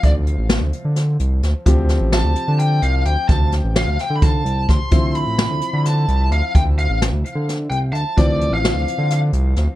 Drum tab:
HH |xxxxxxx|xxxxxxx|xxxxxxx|xxxxxxx|
SD |--o-o-o|-oo----|-ooo--o|--o-o--|
BD |o------|o------|o---o-o|o------|

HH |xxxxxxx|xxxxxxx|
SD |--o-o--|--o-o-o|
BD |o------|o------|